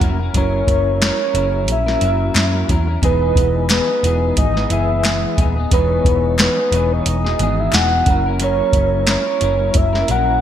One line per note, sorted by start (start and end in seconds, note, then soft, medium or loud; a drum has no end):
0.00 0.28 F1 medium
0.00 0.19 F#3 medium
0.00 0.20 F#3 medium
0.00 0.20 A#3 medium
0.00 0.20 C#4 medium
0.00 0.20 E4 medium
0.00 0.21 F#4 medium
0.00 kick medium
0.00 closed hi-hat medium
0.04 0.18 A#4 medium
0.19 0.34 C#4 soft
0.19 0.36 E4 soft
0.19 0.35 A#4 medium
0.33 0.61 F#1 loud
0.33 1.22 F#3 medium
0.33 1.00 F#3 medium
0.33 1.22 A#3 medium
0.33 1.22 C#4 medium
0.33 1.01 C#4 medium
0.33 1.23 E4 medium
0.33 1.03 E4 medium
0.33 0.42 A4 medium
0.33 0.99 C#5 loud
0.33 kick loud
0.33 closed hi-hat medium
0.37 1.03 A#4 medium
0.42 1.26 A#4 medium
0.67 1.09 F#1 loud
0.67 kick medium
0.67 closed hi-hat medium
1.01 1.20 F#3 medium
1.01 1.20 C#4 medium
1.01 1.20 E4 medium
1.01 1.18 A#4 medium
1.01 1.67 C#5 loud
1.01 snare loud
1.01 clap medium
1.01 closed hi-hat medium
1.19 1.34 C#4 soft
1.19 1.35 E4 medium
1.19 1.35 A#4 medium
1.33 1.68 F#1 loud
1.33 1.79 F#3 medium
1.33 1.87 F#3 medium
1.33 1.79 A#3 medium
1.33 1.79 C#4 medium
1.33 1.88 C#4 medium
1.33 1.80 E4 medium
1.33 1.87 E4 medium
1.33 1.80 G#4 medium
1.33 closed hi-hat medium
1.38 1.85 A#4 medium
1.68 1.95 A#1 loud
1.68 closed hi-hat loud
1.72 2.67 E5 loud
1.85 2.87 F#3 medium
1.85 2.87 A#3 medium
1.85 2.88 C#4 medium
1.85 2.88 E4 medium
1.85 2.02 E4 soft
1.85 2.88 F#4 medium
1.85 2.02 A#4 medium
1.85 snare soft
1.90 2.01 C#4 soft
2.01 2.29 F#1 medium
2.01 2.34 F#3 medium
2.01 2.35 C#4 medium
2.01 2.35 E4 medium
2.01 closed hi-hat medium
2.05 2.36 A#4 medium
2.35 2.62 F#2 loud
2.35 2.54 F#3 medium
2.35 2.55 C#4 medium
2.35 2.54 E4 medium
2.35 2.52 A#4 medium
2.35 snare loud
2.35 clap medium
2.35 closed hi-hat loud
2.53 2.68 C#4 soft
2.53 2.69 E4 medium
2.53 2.69 A#4 medium
2.68 2.96 E2 medium
2.68 2.87 F#3 medium
2.68 2.88 C#4 medium
2.68 2.87 E4 medium
2.68 2.86 A#4 medium
2.68 kick medium
2.68 closed hi-hat medium
2.87 3.02 C#4 soft
2.87 3.03 E4 medium
2.87 3.03 A#4 medium
3.02 3.30 E1 medium
3.02 3.69 E3 medium
3.02 3.91 G#3 medium
3.02 3.91 B3 medium
3.02 3.69 B3 medium
3.02 3.91 D#4 medium
3.02 3.70 D#4 medium
3.02 3.91 E4 medium
3.02 3.71 G#4 medium
3.02 3.92 B4 medium
3.02 3.67 B4 medium
3.02 kick loud
3.02 closed hi-hat medium
3.36 3.78 E1 loud
3.36 kick medium
3.36 closed hi-hat medium
3.69 3.88 E3 medium
3.69 3.89 B3 medium
3.69 3.89 D#4 medium
3.69 3.86 G#4 medium
3.69 4.34 B4 medium
3.69 snare loud
3.69 clap medium
3.69 closed hi-hat loud
3.87 4.03 B3 soft
3.87 4.05 D#4 medium
3.87 4.03 G#4 medium
4.02 4.31 E1 medium
4.02 4.56 E3 medium
4.02 4.47 G#3 medium
4.02 4.48 B3 medium
4.02 4.56 B3 medium
4.02 4.48 D#4 medium
4.02 4.55 D#4 medium
4.02 4.48 E4 medium
4.02 4.49 F#4 medium
4.02 closed hi-hat medium
4.07 4.53 G#4 medium
4.37 4.64 G#1 loud
4.37 4.73 D#5 loud
4.37 kick loud
4.37 closed hi-hat loud
4.54 5.56 G#3 medium
4.54 5.56 B3 medium
4.54 4.70 B3 soft
4.54 4.71 D#4 medium
4.54 5.57 E4 medium
4.54 4.70 G#4 medium
4.54 5.57 B4 medium
4.54 snare soft
4.70 5.24 F#1 medium
4.70 5.02 E3 medium
4.70 5.03 B3 medium
4.70 5.04 G#4 medium
4.70 5.38 E5 loud
4.70 closed hi-hat medium
5.03 5.36 E3 medium
5.03 5.37 B3 medium
5.03 5.39 G#4 medium
5.03 snare loud
5.03 clap medium
5.03 closed hi-hat loud
5.37 5.65 D#1 medium
5.37 5.56 E3 medium
5.37 5.57 B3 medium
5.37 5.57 D#4 medium
5.37 kick medium
5.37 closed hi-hat medium
5.41 5.55 G#4 medium
5.56 5.71 B3 soft
5.56 5.72 D#4 soft
5.56 5.71 G#4 medium
5.70 5.99 E1 loud
5.70 6.38 E3 medium
5.70 6.59 G#3 medium
5.70 6.59 B3 medium
5.70 6.39 B3 medium
5.70 6.60 D#4 medium
5.70 6.40 D#4 medium
5.70 6.60 E4 medium
5.70 6.40 G#4 medium
5.70 6.36 B4 loud
5.70 6.60 C#5 medium
5.70 kick loud
5.70 closed hi-hat loud
6.05 6.47 E1 loud
6.05 kick medium
6.05 closed hi-hat medium
6.39 6.57 E3 medium
6.39 6.58 B3 medium
6.39 6.57 D#4 medium
6.39 6.55 G#4 medium
6.39 6.94 B4 medium
6.39 snare loud
6.39 clap medium
6.39 closed hi-hat loud
6.57 6.73 B3 soft
6.57 6.73 D#4 medium
6.57 6.72 G#4 medium
6.71 6.99 E1 medium
6.71 7.25 E3 medium
6.71 7.16 G#3 medium
6.71 7.16 B3 medium
6.71 7.25 B3 medium
6.71 7.17 D#4 medium
6.71 7.25 D#4 medium
6.71 7.17 E4 medium
6.71 7.17 C#5 medium
6.71 closed hi-hat medium
6.76 7.23 G#4 medium
6.93 7.61 D#5 loud
7.06 7.33 E1 loud
7.06 closed hi-hat loud
7.23 8.06 G#3 medium
7.23 8.06 B3 medium
7.23 8.07 D#4 medium
7.23 7.40 D#4 medium
7.23 8.06 E4 medium
7.23 8.08 F#4 medium
7.23 7.40 G#4 medium
7.23 snare soft
7.28 7.40 B3 soft
7.39 7.67 G#1 loud
7.39 7.72 E3 medium
7.39 7.73 B3 medium
7.39 7.74 D#4 medium
7.39 7.75 G#4 medium
7.39 closed hi-hat medium
7.59 7.76 E5 loud
7.72 8.00 E1 medium
7.72 8.07 E3 medium
7.72 8.08 B3 medium
7.72 8.08 D#4 medium
7.72 8.08 G#4 medium
7.72 8.26 F#5 loud
7.72 snare loud
7.72 clap medium
7.72 closed hi-hat loud
8.05 8.61 F#1 loud
8.05 9.23 F#3 medium
8.05 8.25 F#3 medium
8.05 9.23 A#3 medium
8.05 9.23 C#4 medium
8.05 8.26 C#4 medium
8.05 9.24 E4 medium
8.05 9.24 A#4 medium
8.05 kick loud
8.05 closed hi-hat medium
8.09 8.27 E4 medium
8.09 8.25 A#4 medium
8.26 8.40 C#4 soft
8.26 8.41 E4 soft
8.26 8.41 A#4 medium
8.40 9.07 F#3 medium
8.40 9.08 C#4 medium
8.40 9.08 E4 medium
8.40 9.10 A#4 loud
8.40 9.05 C#5 loud
8.40 closed hi-hat medium
8.73 9.15 F#1 loud
8.73 kick medium
8.73 closed hi-hat medium
9.07 9.26 F#3 medium
9.07 9.27 C#4 medium
9.07 9.27 E4 medium
9.07 9.25 A#4 medium
9.07 9.79 C#5 loud
9.07 snare loud
9.07 clap medium
9.07 closed hi-hat loud
9.26 9.41 C#4 soft
9.26 9.41 E4 medium
9.26 9.41 A#4 medium
9.40 9.69 F#1 loud
9.40 9.85 F#3 medium
9.40 9.93 F#3 medium
9.40 9.85 A#3 medium
9.40 9.85 C#4 medium
9.40 9.94 C#4 medium
9.40 9.86 E4 medium
9.40 9.94 E4 medium
9.40 9.86 A#4 medium
9.40 9.92 A#4 medium
9.40 closed hi-hat medium
9.74 10.02 F#1 loud
9.74 10.12 E5 loud
9.74 kick loud
9.74 closed hi-hat loud
9.93 10.41 F#3 medium
9.93 10.41 A#3 medium
9.93 10.41 C#4 medium
9.93 10.08 C#4 soft
9.93 10.41 E4 medium
9.93 10.09 E4 medium
9.93 10.00 G#4 medium
9.93 10.08 A#4 medium
9.93 snare soft
10.02 10.41 A#4 medium
10.08 10.41 A#1 medium
10.08 10.41 F#3 medium
10.08 10.41 C#4 medium
10.08 10.41 E4 medium
10.08 10.41 A#4 medium
10.08 10.41 F#5 loud
10.08 closed hi-hat medium